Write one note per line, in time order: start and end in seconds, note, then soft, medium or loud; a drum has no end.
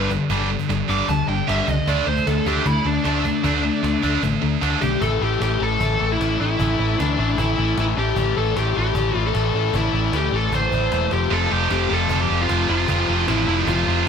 0.00 0.16 G1 loud
0.00 1.84 G3 medium
0.00 4.98 D4 medium
0.00 4.98 A4 medium
0.10 0.28 G2 medium
0.10 0.28 D3 medium
0.10 cajon bass medium
0.10 cajon slap soft
0.30 0.55 G1 medium
0.30 0.48 G2 medium
0.30 0.48 D3 medium
0.30 0.49 G3 loud
0.30 cajon bass loud
0.49 0.67 G2 medium
0.49 0.67 D3 medium
0.59 cajon bass medium
0.69 0.82 G1 medium
0.69 0.87 G2 medium
0.69 0.87 D3 medium
0.69 cajon slap loud
0.89 1.01 G1 medium
0.89 1.07 G2 medium
0.89 1.08 D3 loud
0.89 1.08 G3 loud
0.89 1.08 D6 medium
0.89 cajon bass medium
1.09 1.21 D2 medium
1.09 1.26 G2 medium
1.09 1.27 D3 loud
1.09 1.28 A5 medium
1.09 cajon bass loud
1.27 1.40 G1 medium
1.27 1.47 G2 medium
1.27 1.47 D3 medium
1.27 1.47 G5 medium
1.48 1.61 G1 medium
1.48 1.66 G2 medium
1.48 1.67 D3 loud
1.48 1.67 G3 loud
1.48 1.69 E5 medium
1.48 cajon slap loud
1.68 1.80 C#2 medium
1.68 1.86 G2 medium
1.68 1.86 D3 medium
1.68 1.88 D#5 loud
1.68 cajon bass medium
1.68 cajon slap soft
1.87 2.00 D2 loud
1.87 2.06 D3 medium
1.87 2.06 A3 medium
1.87 2.06 D4 loud
1.87 2.07 D5 loud
1.87 4.99 E5 medium
1.87 cajon bass loud
2.07 2.19 D2 medium
2.07 2.25 D3 medium
2.07 2.25 A3 medium
2.07 2.27 C5 medium
2.17 cajon bass medium
2.27 2.39 D2 medium
2.27 2.45 D3 medium
2.27 2.45 A3 medium
2.27 2.47 A4 loud
2.27 cajon slap loud
2.46 2.59 D2 loud
2.46 2.65 D3 loud
2.46 2.65 A3 loud
2.46 2.65 D4 loud
2.46 2.67 G4 medium
2.46 cajon bass loud
2.66 2.78 D2 medium
2.66 2.84 D3 medium
2.66 2.84 A3 loud
2.66 2.85 E4 medium
2.66 cajon bass loud
2.85 2.98 D2 medium
2.85 3.03 D3 medium
2.85 3.03 A3 medium
2.85 3.04 D4 medium
3.05 3.30 D2 medium
3.05 3.24 D3 loud
3.05 3.24 A3 loud
3.05 4.19 D4 loud
3.05 3.24 D4 loud
3.05 cajon slap loud
3.25 3.42 D3 medium
3.25 3.43 A3 medium
3.25 cajon bass medium
3.43 3.69 D2 loud
3.43 3.62 D3 medium
3.43 3.63 A3 medium
3.43 3.63 D4 medium
3.43 cajon bass loud
3.64 3.82 D3 medium
3.64 3.82 A3 medium
3.83 3.96 D2 medium
3.83 4.01 D3 medium
3.83 4.01 A3 medium
3.83 cajon slap loud
4.03 4.16 D2 medium
4.03 4.21 D3 loud
4.03 4.22 A3 loud
4.03 4.22 D4 loud
4.03 cajon bass medium
4.22 4.36 A1 medium
4.22 4.40 D3 medium
4.22 4.41 A3 loud
4.22 cajon bass loud
4.42 4.55 D2 medium
4.42 4.60 D3 medium
4.42 4.60 A3 medium
4.61 4.75 D2 medium
4.61 4.80 D3 loud
4.61 4.81 A3 loud
4.61 4.81 D4 loud
4.61 cajon slap loud
4.82 4.95 B1 medium
4.82 5.00 D3 medium
4.82 5.00 A3 medium
4.82 5.00 G4 medium
4.82 cajon bass loud
5.00 5.18 A1 loud
5.00 5.21 A2 loud
5.00 5.21 E3 loud
5.00 5.22 A3 loud
5.00 14.08 A4 medium
5.00 5.22 A4 loud
5.00 8.12 E5 medium
5.00 14.08 C6 medium
5.00 cajon bass loud
5.21 5.38 A1 medium
5.21 5.40 A2 medium
5.21 5.41 E3 medium
5.21 5.41 A3 medium
5.21 5.41 G4 medium
5.40 5.57 A1 medium
5.40 5.59 A2 medium
5.40 5.60 E3 medium
5.40 5.60 A3 medium
5.40 5.62 G4 medium
5.40 cajon slap loud
5.59 5.77 A1 loud
5.59 5.80 A2 loud
5.59 5.81 E3 loud
5.59 5.81 A3 loud
5.59 6.11 A4 loud
5.80 5.97 A1 medium
5.80 5.99 A2 loud
5.80 5.99 E3 loud
5.80 6.00 A3 loud
5.80 cajon bass loud
5.99 6.17 A1 medium
5.99 6.19 A2 medium
5.99 6.20 E3 loud
5.99 6.20 A3 medium
6.12 6.40 E4 medium
6.19 6.36 A1 medium
6.19 6.39 A2 loud
6.19 6.40 E3 loud
6.19 6.40 A3 loud
6.19 cajon slap loud
6.40 6.56 A1 medium
6.40 6.59 A2 loud
6.40 6.59 E3 medium
6.40 6.59 A3 loud
6.40 7.00 E4 medium
6.59 6.76 A1 loud
6.59 6.79 A2 loud
6.59 6.80 E3 loud
6.59 6.80 A3 loud
6.59 cajon bass loud
6.79 6.95 A1 loud
6.79 6.97 A2 medium
6.79 6.98 E3 medium
6.79 6.99 A3 medium
6.98 7.15 D2 medium
6.98 7.17 A2 medium
6.98 7.18 E3 medium
6.98 7.19 A3 medium
6.98 7.19 D4 medium
6.98 cajon slap loud
7.18 7.34 A1 loud
7.18 7.38 A2 loud
7.18 7.38 E3 loud
7.18 7.39 A3 loud
7.18 7.39 D4 medium
7.38 7.54 A1 loud
7.38 7.58 A2 loud
7.38 7.58 E3 loud
7.38 7.58 A3 loud
7.38 7.75 E4 medium
7.38 cajon bass loud
7.58 7.74 A1 medium
7.58 7.78 A2 loud
7.58 7.78 E3 medium
7.58 7.78 A3 loud
7.77 7.93 A1 medium
7.77 7.97 A2 loud
7.77 7.97 E3 loud
7.77 7.97 A3 loud
7.77 7.85 E4 loud
7.77 cajon slap loud
7.88 cajon slap soft
7.97 8.13 A1 medium
7.97 8.17 A2 medium
7.97 8.17 E3 loud
7.97 8.18 A3 loud
7.97 8.38 G4 loud
8.16 8.33 A1 loud
8.16 8.36 A2 medium
8.16 8.36 E3 loud
8.16 8.37 A3 loud
8.16 11.08 D5 medium
8.16 cajon bass loud
8.36 8.53 A1 loud
8.36 8.55 A2 medium
8.36 8.56 E3 medium
8.36 8.56 A3 loud
8.36 8.57 A4 medium
8.55 8.72 A1 loud
8.55 8.75 A2 medium
8.55 8.75 E3 medium
8.55 8.76 A3 loud
8.55 8.75 G4 loud
8.55 cajon slap loud
8.76 8.93 A1 medium
8.76 8.93 A2 loud
8.76 8.94 E3 loud
8.76 8.95 A3 loud
8.76 9.27 G4 loud
8.95 9.11 A1 loud
8.95 9.13 A2 loud
8.95 9.13 E3 loud
8.95 9.14 A3 loud
8.95 cajon bass loud
9.14 9.31 A1 medium
9.14 9.32 A2 loud
9.14 9.33 E3 loud
9.14 9.34 A3 loud
9.27 9.77 A4 loud
9.33 9.51 A1 medium
9.33 9.53 A2 loud
9.33 9.54 E3 loud
9.33 9.55 A3 loud
9.33 cajon slap loud
9.54 9.70 A1 medium
9.54 9.73 A2 loud
9.54 9.73 E3 loud
9.54 9.74 A3 loud
9.74 9.90 A1 loud
9.74 9.93 A2 medium
9.74 9.93 E3 loud
9.74 9.94 A3 loud
9.74 10.15 E4 loud
9.74 cajon bass loud
9.93 10.09 A1 loud
9.93 10.12 A2 medium
9.93 10.13 E3 loud
9.93 10.14 A3 medium
10.12 10.28 D2 medium
10.12 10.31 A2 medium
10.12 10.32 E3 medium
10.12 10.33 A3 medium
10.12 cajon slap loud
10.16 10.36 G4 loud
10.32 10.49 A1 medium
10.32 10.51 A2 loud
10.32 10.52 E3 loud
10.32 10.53 A3 loud
10.32 10.54 A4 loud
10.52 10.69 A1 medium
10.52 10.72 A2 loud
10.52 10.72 E3 medium
10.52 10.74 A3 loud
10.52 11.12 C5 loud
10.52 cajon bass loud
10.72 10.88 A1 medium
10.72 10.90 A2 medium
10.72 10.91 E3 medium
10.72 10.92 A3 loud
10.72 cajon bass medium
10.92 11.08 E1 medium
10.92 11.10 A2 loud
10.92 11.10 E3 loud
10.92 14.08 A3 loud
10.92 cajon slap loud
11.02 cajon slap soft
11.11 11.28 F1 medium
11.11 11.30 F2 loud
11.11 11.30 C3 loud
11.11 11.30 F3 loud
11.11 11.33 G4 medium
11.11 14.08 F5 medium
11.11 cajon slap medium
11.30 11.47 F1 loud
11.30 11.50 F2 loud
11.30 11.50 C3 medium
11.30 11.51 F3 medium
11.30 11.52 A4 loud
11.50 11.67 F1 loud
11.50 11.69 F2 medium
11.50 11.68 C3 medium
11.50 11.70 F3 medium
11.50 11.71 G4 loud
11.69 11.87 F1 loud
11.69 11.88 F2 medium
11.69 11.89 C3 medium
11.69 11.89 F3 loud
11.69 11.93 G4 loud
11.69 cajon slap loud
11.89 12.07 F1 loud
11.89 12.09 F2 loud
11.89 12.09 C3 loud
11.89 12.09 F3 loud
11.89 12.22 A4 loud
12.09 12.26 F1 medium
12.09 12.28 F2 loud
12.09 12.28 C3 loud
12.09 12.28 F3 loud
12.09 cajon bass loud
12.21 12.41 G4 loud
12.29 12.46 F1 medium
12.29 12.48 F2 loud
12.29 12.48 C3 loud
12.29 12.49 F3 medium
12.41 12.69 F4 loud
12.49 12.66 F1 medium
12.49 12.68 F2 loud
12.49 12.68 C3 loud
12.49 12.68 F3 loud
12.49 cajon slap loud
12.69 12.85 F1 medium
12.69 12.87 F2 medium
12.69 12.88 C3 medium
12.69 12.88 F3 loud
12.69 13.24 F4 loud
12.88 13.05 F1 loud
12.88 13.07 F2 loud
12.88 13.08 C3 loud
12.88 13.08 F3 loud
12.88 cajon bass loud
13.08 13.24 F1 medium
13.08 13.27 F2 medium
13.08 13.28 C3 medium
13.08 13.28 F3 loud
13.28 13.44 A1 medium
13.28 13.47 F2 medium
13.28 13.47 C3 loud
13.28 13.47 F3 loud
13.28 13.47 E4 medium
13.28 cajon slap loud
13.47 13.63 F1 loud
13.47 13.67 F2 loud
13.47 13.67 C3 loud
13.47 13.67 F3 loud
13.47 13.68 E4 medium
13.67 13.83 F1 loud
13.67 13.86 F2 loud
13.67 13.87 C3 loud
13.67 13.87 F3 loud
13.67 14.07 F4 medium
13.67 cajon bass loud
13.87 14.03 F1 loud
13.87 14.06 F2 medium
13.87 14.06 C3 loud
13.87 14.07 F3 loud